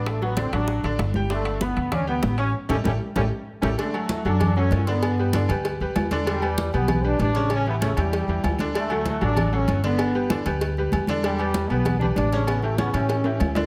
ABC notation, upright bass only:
X:1
M:4/4
L:1/8
Q:1/4=193
K:D
V:1 name="Upright bass" clef=bass
A,,,3 A,,,2 A,,, G,,,2- | G,,,3 D,,3 A,,,2 | z A,,, A,,, z A,,, z2 A,,, | z3 F,,3 G,,2- |
G,,3 D,,2 D,, E,,2- | E,,3 B,,,3 A,,,2- | A,,,3 E,,2 E,, D,,2- | D,,3 A,,,3 G,,,2- |
G,,,3 D,,3 E,,2- | E,,3 B,,,3 A,,,2- | A,,,3 A,,3 D,,2 |]